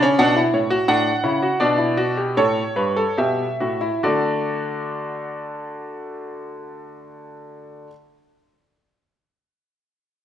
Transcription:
Already playing: D5
0.03 C#4
0.19 B2 D4 F#5
0.36 E4
0.54 A2 C#5
0.70 F#4
0.88 A2 D4 F#5
1.24 C#3 E4
1.43 F#4
1.60 B2 D4 D5
1.78 E4
1.97 F#4
2.17 G4
2.37 A2 A4 C#5
2.76 G2 B4
2.96 A4
3.18 B2 G4 E5
3.60 A2 F#4
3.81 E4
4.03 D3 D4 F#4 D5
4.07 A3

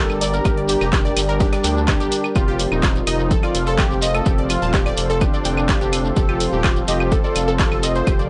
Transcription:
Already playing: G3 D4 G4 A4 A#4 D5 A#5
0.09 G1, snare, claves, shekere
0.21 D5, closed hi-hat, open hi-hat, shekere
0.33 A#4, closed hi-hat, shekere
0.45 G1 G3 D4 G4, kick, closed hi-hat, claves, shekere
0.57 D5, closed hi-hat
0.69 G4, closed hi-hat, open hi-hat, shekere
0.81 F1 A#5, snare, claves, shekere
0.93 G4, kick, snare, clap, closed hi-hat, shekere
1.05 D5, snare, shekere
1.17 G1 G3 D4 G4, closed hi-hat, open hi-hat, claves, shekere
1.29 A#4, shekere
1.40 D4 G4, kick, snare, closed hi-hat, shekere
1.53 D5, snare, closed hi-hat, claves, shekere
1.64 D2 G5, snare, closed hi-hat, open hi-hat, shekere
1.76 G3 D4 G4, shekere
1.88 G4, kick, snare, clap, closed hi-hat, open hi-hat, claves, shekere
2.00 G1 G4, closed hi-hat, shekere
2.12 closed hi-hat, open hi-hat, shekere
2.24 claves, shekere
2.36 F1 F3 C4 F4 G4 A4 C5 F5 C6, kick, closed hi-hat, claves, shekere
2.48 G4
2.59 closed hi-hat, open hi-hat, shekere
2.72 D#1 D#4, claves, shekere
2.83 F4, kick, snare, clap, closed hi-hat, shekere
2.96 closed hi-hat, shekere
3.07 F1 F3 C4 D#4 F4 D#5, closed hi-hat, open hi-hat, claves, shekere
3.19 shekere
3.31 A4, kick, closed hi-hat, shekere
3.43 F4 D5, claves, shekere
3.55 F1, closed hi-hat, open hi-hat, shekere
3.66 A4, closed hi-hat, shekere
3.78 G4, kick, snare, clap, closed hi-hat, claves, shekere
3.91 F1, snare, shekere
4.02 D#5, closed hi-hat, open hi-hat, shekere
4.14 A4, closed hi-hat, claves, shekere
4.26 F1 F3 C4 F4 G4, kick, closed hi-hat, shekere
4.38 D5, closed hi-hat
4.50 F4, closed hi-hat, open hi-hat, claves, shekere
4.62 D#1 A5, snare, shekere
4.74 G4, kick, snare, clap, closed hi-hat, shekere
4.86 D5, snare, claves, shekere
4.97 F1 F3 C4 F4, closed hi-hat, open hi-hat, shekere
5.10 A4, shekere
5.21 D4 G4, kick, closed hi-hat, claves, shekere
5.34 D5, shekere
5.45 F1 G5, closed hi-hat, open hi-hat, shekere
5.57 claves, shekere
5.69 G4, kick, snare, clap, closed hi-hat, open hi-hat, shekere
5.81 F1 G4, closed hi-hat, shekere
5.93 closed hi-hat, open hi-hat, claves, shekere
6.05 shekere
6.16 F1 F3 C4 F4 G4 A4, kick, closed hi-hat, shekere
6.29 G4, claves
6.40 closed hi-hat, open hi-hat, shekere
6.52 D#1 G4, shekere
6.64 F4, kick, snare, clap, closed hi-hat, claves, shekere
6.76 closed hi-hat, shekere
6.88 F1 F3 C4 F4 G4 D#5, closed hi-hat, open hi-hat, shekere
7.00 claves, shekere
7.11 A4, kick, closed hi-hat, shekere
7.24 A4 D5, shekere
7.36 F1, closed hi-hat, open hi-hat, claves, shekere
7.48 A4, shekere
7.59 G4 A4, kick, snare, clap, closed hi-hat, shekere
7.71 F1, snare, claves, shekere
7.83 D#5, closed hi-hat, open hi-hat, shekere
7.95 C5, closed hi-hat, shekere
8.07 F1 F3 C4 F4 G4, kick, closed hi-hat, noise sweep, claves, shekere
8.19 D5, closed hi-hat, shekere

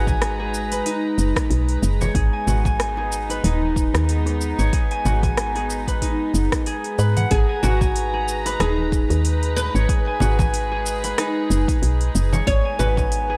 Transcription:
Already playing: G#1 G#3 D#4 F#4 G#4 B4 C#5 A#5
0.07 G#5, kick, high conga, low conga, shaker
0.22 cross-stick, open hi-hat, shaker
0.40 G#4, high bongo
0.54 shaker
0.72 B4, open hi-hat, high bongo, shaker
0.86 D#4, open hi-hat, shaker
1.18 F#1, shaker
1.36 kick, cross-stick, open hi-hat, shaker
1.50 B1, open hi-hat, shaker
1.69 open hi-hat
1.82 F#1, shaker
2.01 C#5, high conga, low conga, shaker
2.15 G#1 B3 D#4 G#4, kick, open hi-hat, shaker
2.33 G#5
2.47 G#1 F#4, low conga, shaker
2.65 G#5, kick, low conga, shaker
2.80 cross-stick, open hi-hat, shaker
2.97 G#4, high bongo
3.12 shaker
3.30 B4, open hi-hat, high bongo, shaker
3.44 D#1 D#4, open hi-hat, shaker
3.62 high bongo, high conga
3.76 kick, shaker
3.94 D#2, cross-stick, open hi-hat, shaker
4.09 open hi-hat, shaker
4.26 open hi-hat, high bongo
4.41 shaker
4.59 G#1 C#5, shaker
4.73 G#4, kick, open hi-hat, shaker
4.91 G#5, open hi-hat
5.05 G#1 F#4, low conga, shaker
5.23 G#5, kick, open hi-hat, high conga, low conga, shaker
5.37 cross-stick, open hi-hat, shaker
5.55 G#4, open hi-hat, high bongo
5.70 shaker
5.88 B4, kick, open hi-hat, high bongo, shaker
6.02 D#4, kick, open hi-hat, shaker
6.34 F#1, shaker
6.52 kick, cross-stick, open hi-hat, shaker
6.66 G#4, open hi-hat, shaker
6.84 open hi-hat
6.99 G#2 B4, shaker
7.17 F#5, open hi-hat, high conga, low conga, shaker
7.31 G#1 G#3 D#4 G#4 B4 A#5, kick, open hi-hat, shaker
7.49 G#5
7.63 G#1 F#4, low conga, shaker
7.81 G#5, kick, low conga, shaker
7.96 open hi-hat, shaker
8.14 G#4, high bongo
8.28 shaker
8.46 B4, open hi-hat, high bongo, shaker
8.60 D#1 D#4 G#4, cross-stick, open hi-hat, shaker
8.78 high conga
8.92 kick, high bongo, shaker
9.10 D#2, open hi-hat, shaker
9.25 open hi-hat, shaker
9.43 open hi-hat
9.56 B4, high bongo, shaker
9.75 G#1 C#5, shaker
9.89 G#4, kick, open hi-hat, shaker
10.07 G#5
10.20 G#1 F#4, low conga, shaker
10.39 G#5, kick, high conga, low conga, shaker
10.54 open hi-hat, shaker
10.72 G#4
10.86 shaker
11.04 B4, open hi-hat, high bongo, shaker
11.18 D#4, cross-stick, open hi-hat, shaker
11.50 F#1, shaker
11.68 kick, open hi-hat, shaker
11.82 B1, open hi-hat, shaker
12.01 open hi-hat
12.15 F#1, shaker
12.33 C#5, high conga, low conga, shaker
12.47 G#1 B3 G#4 C#5, kick, open hi-hat, shaker
12.65 G#5
12.79 G#1 F#4 B4, low conga, shaker
12.97 G#5, kick, low conga, shaker
13.12 open hi-hat, shaker
13.30 G#4, high bongo

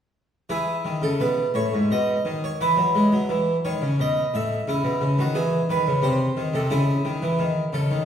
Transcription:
0.49 E3 E4 G#4
0.85 D#3
1.02 C#3 A4
1.20 B2 B4
1.54 A2 C#5
1.74 G#2
1.91 B2 D#5
2.25 D#3
2.44 C#5
2.61 E3 E4 B4
2.77 F#3
2.95 G#3
3.12 F#3
3.29 E3
3.65 D#3 C#5
3.82 C#3
4.00 B2 D#5
4.34 A2 E5
4.68 C#3 E4
4.84 B2
5.01 C#3
5.18 D#3 F#4
5.34 E3 G#4
5.69 D#3 B4
5.87 C#3
6.02 C3 C5
6.37 D#3
6.54 C3 A4
6.70 C#3 E4 G#4
7.05 D#3
7.22 E3
7.39 D#3
7.73 C#3 A4
7.91 D#3

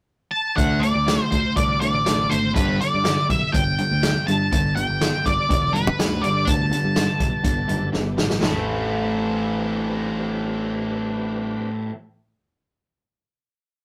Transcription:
0.31 A5
0.56 D2 D3 A3 D4 F#5, kick, closed hi-hat
0.80 D3 A3 D5, closed hi-hat
0.95 D2
1.06 D3 A3, snare, closed hi-hat
1.22 C5
1.31 D2 D3 A3 C5, kick, closed hi-hat
1.56 C2 D3 A3 D5, kick, closed hi-hat
1.80 D3 A3 D5, closed hi-hat
1.94 A1
2.06 D3 A3, snare, closed hi-hat
2.30 G#1 D3 A3 C5, closed hi-hat
2.54 G1 G2 D3 G3 B4, kick, closed hi-hat
2.81 G2 D3 D5, closed hi-hat
2.94 G2
3.04 G2 D3, snare, closed hi-hat
3.30 B1 G2 D3 E5, kick, closed hi-hat
3.52 G1 G2 D3 G5, kick, closed hi-hat
3.78 G2 D3, closed hi-hat
3.91 D2
4.02 G2 D3, snare, closed hi-hat
4.27 G2 D3 A5, closed hi-hat
4.50 G1 G2 D3 B3 D4 G4 A4, kick, closed hi-hat
4.76 G2 D3 G5, closed hi-hat
4.89 G1
5.01 G2 D3, snare, closed hi-hat
5.26 G1 G2 D3 D5, kick, closed hi-hat
5.50 E1 G2 D3, kick, closed hi-hat
5.73 G2 D3 B4, closed hi-hat
5.87 D2
5.99 G2 D3, snare, closed hi-hat
6.22 G2 D3 D5, closed hi-hat
6.45 D2 G2 A5, kick, closed hi-hat
6.49 D3
6.72 G2 D3, closed hi-hat
6.84 G2
6.96 G2 D3, snare, closed hi-hat
7.20 B1 G2 D3, kick, closed hi-hat
7.44 G1 G2 D3, kick, closed hi-hat
7.69 F#1 G2 D3, closed hi-hat
7.93 G1 G2 D3, snare
8.18 A1 G2 D3, snare
8.30 snare
8.41 A1 A2 E3 A3 C4 C#4 D#4 E4 G#4 C5, snare, floor tom
8.58 C4 D4 G4 B4

